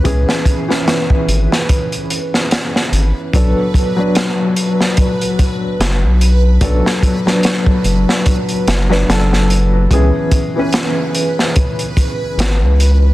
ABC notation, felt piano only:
X:1
M:4/4
L:1/16
Q:"Swing 16ths" 1/4=73
K:C#phr
V:1 name="Felt piano"
[E,B,CG]3 [E,B,CB]12- [E,B,CB] | [F,B,DA]3 [F,B,DB]12- [F,B,DB] | [F,B,DA]3 [F,B,DB]8 [F,B,DB] [F,B,DA]4 | [E,B,CG]3 [E,B,CB]12- [E,B,CB] |]